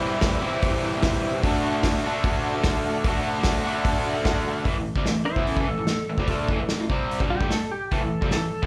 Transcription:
Already playing: overdriven electric guitar C3 E3 G3 C4 E4
0.01 transistor combo organ C4 E4 G4
0.21 transistor combo organ C4 E4 G4, kick, snare, open hi-hat
0.42 overdriven electric guitar E3 G3 C4 E4, transistor combo organ C4 E4 G4
0.46 overdriven electric guitar C3
0.61 transistor combo organ C4 E4 G4, kick, open hi-hat
0.83 transistor combo organ C4 E4 G4
1.02 transistor combo organ C4 E4 G4, kick, snare, open hi-hat
1.24 transistor combo organ C4 E4 G4
1.43 overdriven electric guitar D3 A3 D4, transistor combo organ D4 F#4 A4, kick, open hi-hat
1.47 overdriven electric guitar F#4
1.63 transistor combo organ D4 F#4 A4
1.82 transistor combo organ D4 F#4 A4, kick, snare, open hi-hat
2.04 overdriven electric guitar A3 D4 F#4, transistor combo organ D4 F#4 A4
2.09 overdriven electric guitar D3
2.24 transistor combo organ D4 F#4 A4, kick, open hi-hat
2.43 transistor combo organ D4 F#4 A4
2.63 transistor combo organ D4 F#4 A4, kick, snare, open hi-hat
2.86 transistor combo organ D4 F#4 A4
3.04 overdriven electric guitar D3 A3 D4, transistor combo organ D4 F#4 A4, kick, open hi-hat
3.08 overdriven electric guitar F#4
3.27 transistor combo organ D4 F#4 A4
3.43 transistor combo organ D4 F#4 A4, kick, snare, open hi-hat
3.64 overdriven electric guitar A3 D4 F#4, transistor combo organ D4 F#4 A4 B5
3.69 overdriven electric guitar D3
3.85 transistor combo organ D4 F#4 A4 A5, kick, open hi-hat
4.06 transistor combo organ D4 F#4 A4 F#5
4.25 transistor combo organ D4 F#4 A4 F#5, kick, snare, open hi-hat
4.48 transistor combo organ D4 F#4 A4 E5
4.65 overdriven electric guitar A2 E3, kick, open hi-hat
4.76 overdriven electric guitar A2 E3
4.96 overdriven electric guitar C3 G3, kick
5.06 overdriven electric guitar A2 E3, snare, open hi-hat
5.25 electric slide guitar E4 C5
5.36 overdriven electric guitar E3 B3 E4, kick
5.45 electric slide guitar C#4 A4, open hi-hat
5.56 overdriven electric guitar A2 E3, kick
5.67 overdriven electric guitar A2 E3, electric slide guitar A4
5.78 overdriven electric guitar A2 E3
5.87 snare, open hi-hat
6.10 overdriven electric guitar A2 E3
6.18 overdriven electric guitar C3 G3, kick
6.28 overdriven electric guitar D3 A3 D4, kick, open hi-hat
6.48 overdriven electric guitar A2 E3, kick
6.60 overdriven electric guitar A2 E3
6.69 snare, open hi-hat
6.80 overdriven electric guitar A2 E3
6.90 overdriven electric guitar C3 G3 C4, kick
7.11 open hi-hat
7.20 overdriven electric guitar G2 D3 G3, kick
7.30 electric slide guitar G4
7.40 overdriven electric guitar D3 A3, kick
7.51 electric slide guitar A4, muted overdriven electric guitar stroke, snare, open hi-hat
7.71 electric slide guitar G4
7.91 overdriven electric guitar A2 E3, electric slide guitar A4, kick, open hi-hat
8.03 overdriven electric guitar A2 E3
8.22 overdriven electric guitar C3 G3, kick
8.31 overdriven electric guitar A2 E3, electric slide guitar A4, snare, open hi-hat
8.63 overdriven electric guitar E3 B3, kick

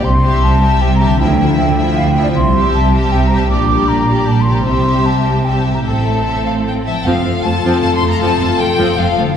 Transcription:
Already playing: harp C3 C4 E4
0.01 double bass section C2, harp G4, flute C6
0.06 cello section C3
0.23 viola section G3, violin section G4 E5
0.41 double bass section C2, cello section C3, flute A5
0.61 viola section G3, violin section G4 E5
0.80 double bass section C2, cello section C3, flute G5
0.95 flute A#5
0.99 harp D3, viola section G3, violin section G4 E5
1.07 harp A3, flute A5
1.11 harp E4
1.16 double bass section D2, harp F3, viola section F3, violin section E4, flute G5
1.20 cello section D3, timpani D3, violin section E5
1.38 viola section F3, violin section E4 E5
1.58 double bass section D2, cello section D3, flute G5
1.77 viola section F3, violin section E4 E5
1.97 double bass section D2, cello section D3, flute F5
2.11 flute G5
2.16 harp C3, viola section F3, violin section E4 E5
2.21 harp C4, flute D5
2.26 harp E4
2.30 harp G4
2.35 double bass section C2, cello section C3, flute C6
2.54 viola section G3, violin section G4 E5
2.74 double bass section C2, cello section C3, flute A5
2.94 viola section G3, violin section G4 E5
3.12 double bass section C2, cello section C3, flute G5
3.26 flute A#5
3.31 harp A#2, viola section G3, violin section G4 E5
3.38 harp G3, flute A5
3.42 harp D4
3.47 double bass section A#1, viola section G3, harp G4, flute D6
3.51 cello section A#2, violin section G4 D5
3.69 viola section G3, violin section G4 D5
3.88 double bass section A#1, cello section A#2, flute A#5
4.09 viola section G3, violin section G4 D5
4.27 double bass section A#1, cello section A#2, flute A5
4.41 flute C6
4.47 harp C3, viola section G3, violin section G4 D5
4.53 harp C4, flute A#5
4.58 harp E4
4.63 double bass section C2, viola section G3, harp G4
4.67 cello section C3, violin section G4 E5, flute C6
5.06 flute A5
5.45 viola section G3, violin section G4 E5, flute G5
5.60 flute A5
5.68 harp A2
5.72 harp C4, flute A#5
5.77 harp E4
5.81 harp A4, violin section E5
5.86 double bass section A1, cello section A2, viola section C4, violin section A4, flute A5
6.25 violin section E5
6.46 violin section F5
6.67 violin section G5
6.85 harp F3, violin section E5 A5
6.92 harp C4, violin section G5
7.00 double bass section F1, harp A4, violin section A4
7.05 cello section F2, viola section F3 C4, french horn section A3 F4, violin section F4 F5
7.22 double bass section F1, cello section F2, viola section F3 C4
7.42 double bass section F1, cello section F2, viola section F3 A3, violin section A5
7.61 double bass section F1, cello section F2, viola section F3 C4
7.80 double bass section F1, cello section F2, viola section F3 C4, violin section A5
7.95 violin section C6
8.00 double bass section F1, cello section F2, viola section F3 A3
8.11 violin section A#5
8.19 double bass section F1, cello section F2, viola section F3 C4, violin section A5
8.38 double bass section F1, cello section F2, viola section F3 C4
8.58 double bass section F1, cello section F2, viola section F3 A3, violin section G5
8.77 double bass section F1, cello section F2, viola section F3 C4
8.97 double bass section F1, cello section F2, viola section F3 C4, violin section F5
9.16 double bass section F1, cello section F2, harp D3, viola section F3 A3
9.24 harp D4
9.28 harp E3
9.32 harp A4

